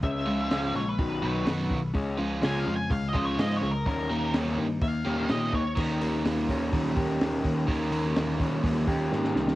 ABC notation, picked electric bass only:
X:1
M:4/4
L:1/8
Q:1/4=126
K:Ebmix
V:1 name="Picked electric bass" clef=bass
D,, D,, D,, B,,, _C,, C,, _G,, C,, | D,, D,, D,, F,, D,, D,, A,, D,, | E,, E,, E,, G,, E,, E,, B,, E,, | E,, E,, E,, E,, E,, E,, E,, E,, |
E,, E,, E,, E,, E,, E,, A,, C,, |]